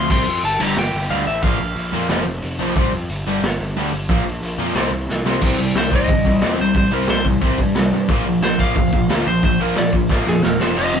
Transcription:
Already playing: C6
0.10 C2 C3 G3 C4 C6, kick, crash
0.26 F2, open hi-hat
0.43 G1 A5, open hi-hat
0.59 G1 G2 D3 G3 A#5, crash
0.76 G1 G5, snare
0.93 G1, open hi-hat
1.10 D2 G2 D3 G3 F5, open hi-hat
1.27 A1 E5, open hi-hat
1.43 A#1 A#2 F3 A#3 F5, kick, open hi-hat
1.59 A#1, open hi-hat
1.76 A#1, open hi-hat
1.93 F2 A#2 F3 A#3, open hi-hat
2.09 F1 F2 C3 F3, snare, open hi-hat
2.25 F1, open hi-hat
2.42 F1, open hi-hat
2.59 A#1 F2 C3 F3, open hi-hat
2.75 C2 C3 G3 C4, kick, open hi-hat
2.92 F2, open hi-hat
3.09 G1, open hi-hat
3.26 G1 G2 D3 G3, open hi-hat
3.42 G1, snare, open hi-hat
3.60 G1, open hi-hat
3.76 D2 G2 D3 G3, open hi-hat
3.92 G1, open hi-hat
4.09 A#1 A#2 F3 A#3, kick, open hi-hat
4.25 A#1, open hi-hat
4.42 A#1, open hi-hat
4.58 F2 A#2 F3 A#3, open hi-hat
4.75 C2 C3 G3 C4, snare, open hi-hat
4.91 C2, open hi-hat
5.09 C2, snare
5.25 C2 C3 G3 C4, snare
5.41 C2 C3 G3 C4, kick, crash
5.58 C2 C3 G3
5.74 C2 C3 G3 C5, snare, open hi-hat
5.91 C2 C3 G3 C4, kick
5.96 D#5
6.08 G1 C3 G3, kick, open hi-hat
6.25 C2 C3 G3, kick
6.41 E2 C3 G3 C4, snare, open hi-hat
6.59 C2 C3 G3 C5
6.74 C2 C3 G3 C5, kick, open hi-hat
6.92 C2 C3 G3 C4 A#4
7.07 C2 C3 G3 C5, snare, open hi-hat
7.25 C2 C3 G3, kick
7.41 C2 C3 G3 C4, kick, open hi-hat
7.58 G2 C3 G3, kick
7.75 C2 C3 G3, snare, open hi-hat
7.92 G2 C3 G3
8.09 A#1 A#2 F3 A#3, kick, open hi-hat
8.25 A#1 A#2 F3
8.41 A#1 A#2 F3 C5, snare, open hi-hat
8.58 A#1 A#2 F3 A#3 F5, kick
8.76 F1 A#2 F3, kick, open hi-hat
8.92 A#1 A#2 F3, kick
9.08 D2 A#2 F3 A#3, snare, open hi-hat
9.26 A#1 A#2 F3 C5
9.43 A#1 A#2 F3 C5, kick, open hi-hat
9.60 A#1 A#2 F3 A#3 A#4
9.76 A#1 A#2 F3 D5, snare, open hi-hat
9.93 A#1 A#2 F3, kick
10.09 A#1 A#2 F3 A#3, kick, snare
10.26 F2 A#2 F3 G#4, snare
10.42 E1 A#2 F3 A#4, snare
10.59 F1 F2 C3 F3 C5, snare
10.76 F1 F2 C3 F3 D#5, crash
10.94 F1 F2 C3

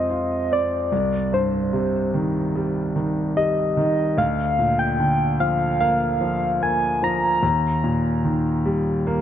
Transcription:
Already playing: F2 C3 G#3 C4 F4 D#5
0.10 F4
0.51 C4 D5
0.92 C2
1.33 G2 C5
1.73 C3
2.14 D#3
2.56 G3
2.96 D#3
3.37 G3 D#5
3.77 D#3
4.18 D2 F5
4.59 A#2
4.79 G5
5.00 D3
5.40 F3 F5
5.80 A#3 F5
6.21 F3
6.61 A#3 G#5
7.03 F3 A#5
7.43 D#2
7.84 A#2
8.25 D#3
8.66 G3
9.07 A#3

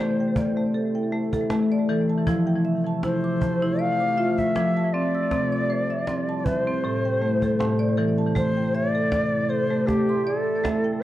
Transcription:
Already playing: C3 A3 E4 A4 C5 D5
0.00 A3
0.19 G5, cajon slap
0.36 D5, cajon bass
0.57 A3
0.74 A4, cajon slap
0.95 G5
1.12 A3
1.33 A4, cajon bass
1.50 A3 A5, cajon slap
1.72 D5
1.89 E3 A4
2.09 A5
2.27 F3 A3 E4, cajon bass
2.47 G5
2.65 E5
2.86 A5
3.03 E4 C5, cajon slap
3.24 D6, cajon slap
3.41 A5, cajon bass
3.62 E4
3.79 D5 F5, cajon slap
4.00 D6
4.17 F4 E5
4.38 E5, cajon bass
4.55 F3 D6, cajon slap
4.77 A5
4.93 C4 D5 E5
5.15 E6
5.31 C3 G3 C4 E4, cajon bass, cajon slap
5.52 D5
5.70 C5
5.90 E5, cajon slap
6.07 C4, cajon slap
6.29 A5
6.39 D5
6.45 B4 E5, cajon bass
6.56 C5
6.67 C4
6.84 A2 C3 A3 A4
7.05 G5
7.22 A3
7.42 A4, cajon bass
7.59 A2 A5, cajon slap
7.79 D5
7.97 E3 A4
8.18 A5
8.35 C3 A3 E4 C5, cajon bass
8.57 G5
8.75 D5 E5
8.95 A4
9.12 D5, cajon bass, cajon slap
9.49 A4 C5
9.70 A3
9.87 A3 G4, cajon bass, cajon slap
10.09 C6
10.24 A4 D5, cajon slap
10.63 A3 E5, cajon bass, cajon slap
10.84 G5

